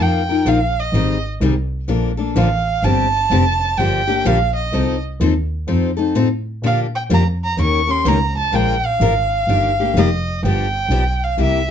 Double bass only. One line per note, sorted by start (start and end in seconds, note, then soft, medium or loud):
0.00 0.45 F2 medium
0.46 0.92 A#1 medium
0.92 1.39 G#1 medium
1.41 1.87 C2 medium
1.88 2.35 A#1 medium
2.35 2.82 A1 medium
2.83 3.29 G1 medium
3.30 3.77 F1 medium
3.78 4.24 G1 medium
4.25 4.72 A#1 medium
4.72 5.19 C2 medium
5.20 5.67 D#2 medium
5.67 6.14 F2 medium
6.15 6.61 A2 medium
6.62 7.09 A#2 medium
7.10 7.56 F2 medium
7.57 8.04 D#2 medium
8.05 8.33 C#2 medium
8.35 8.51 C#2 soft
8.52 8.81 A#1 medium
8.83 8.99 A#1 soft
9.00 9.46 G#1 medium
9.47 9.93 G1 medium
9.94 10.41 F1 medium
10.43 10.88 G1 medium
10.89 11.36 B1 medium
11.38 11.71 C2 medium